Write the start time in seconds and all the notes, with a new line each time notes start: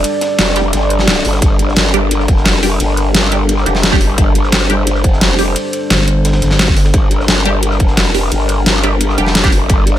Already playing: G3 D4 A4 D5
0.04 closed hi-hat, ride
0.21 snare, closed hi-hat, ride
0.38 F1, snare, closed hi-hat, ride
0.56 G3 D4 G4, snare, closed hi-hat, ride
0.73 G1, snare, closed hi-hat, ride
0.81 snare
0.90 closed hi-hat, ride
0.98 snare
1.07 snare, closed hi-hat, ride
1.16 snare, ride
1.25 G1, snare, open hi-hat, ride
1.33 snare, ride
1.42 G1 A#4, kick, closed hi-hat, ride
1.59 closed hi-hat, ride
1.69 snare
1.76 G1, snare, closed hi-hat, ride
1.94 G3 D4 G4, closed hi-hat, ride
2.11 closed hi-hat, ride
2.20 snare
2.28 F1, kick, closed hi-hat, ride
2.37 snare
2.45 snare, closed hi-hat, ride
2.63 G3 D4 G4, snare, open hi-hat
2.80 G1, closed hi-hat, ride
2.97 closed hi-hat, ride
3.14 snare, closed hi-hat, ride
3.32 G3 D4 G4, closed hi-hat, ride
3.49 closed hi-hat, ride
3.58 snare
3.66 F1 G3 D4 G4, closed hi-hat, ride
3.75 snare
3.83 snare, closed hi-hat, ride
3.92 G3 D4 G4, kick, ride
4.01 snare, open hi-hat, ride
4.18 G1 C5, kick, closed hi-hat, ride
4.35 closed hi-hat, ride
4.43 snare
4.52 G1, snare, closed hi-hat, ride
4.70 G3 D4 G4, closed hi-hat, ride
4.87 closed hi-hat, ride
4.95 snare
5.04 F1, kick, closed hi-hat, ride
5.13 snare
5.21 snare, closed hi-hat, ride
5.39 G3 D4 G4, snare, open hi-hat
5.56 closed hi-hat, ride
5.73 closed hi-hat, ride
5.90 G1, snare, closed hi-hat, ride
6.08 closed hi-hat, ride
6.25 snare, closed hi-hat, ride
6.33 snare, ride
6.42 G1, snare, closed hi-hat, ride
6.51 snare, ride
6.59 snare, closed hi-hat, ride
6.68 kick, ride
6.76 snare, open hi-hat, ride
6.85 snare, ride
6.94 G1 A#4, kick, closed hi-hat, ride
7.11 closed hi-hat, ride
7.20 snare
7.28 G1, snare, closed hi-hat, ride
7.45 G3 D4 G4, closed hi-hat, ride
7.63 closed hi-hat, ride
7.71 snare
7.79 F1, kick, closed hi-hat, ride
7.88 snare
7.97 snare, closed hi-hat, ride
8.14 G3 D4 G4, snare, open hi-hat
8.31 G1, closed hi-hat, ride
8.49 closed hi-hat, ride
8.66 snare, closed hi-hat, ride
8.83 G3 D4 G4, closed hi-hat, ride
9.00 closed hi-hat, ride
9.10 snare
9.18 F1 G3 D4 G4, closed hi-hat, ride
9.27 snare
9.35 snare, closed hi-hat, ride
9.44 G3 D4 G4, kick, ride
9.52 snare, open hi-hat, ride
9.69 G1 D5, kick, closed hi-hat, ride
9.87 closed hi-hat, ride
9.96 snare